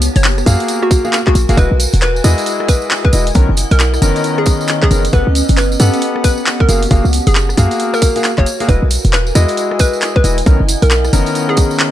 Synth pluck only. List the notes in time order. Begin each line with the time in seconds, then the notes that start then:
0.16 C#5
0.83 F#4
1.27 F#4
1.58 B4
2.02 B4
2.68 B4
3.05 B4
3.71 A#4
4.38 G#4
4.83 G#4
5.13 B4
5.57 B4
6.24 B4
6.60 A#4
7.27 G#4
7.94 A#4
8.38 C#5
8.69 B4
9.13 B4
9.80 B4
10.16 B4
10.82 A#4
11.49 G#4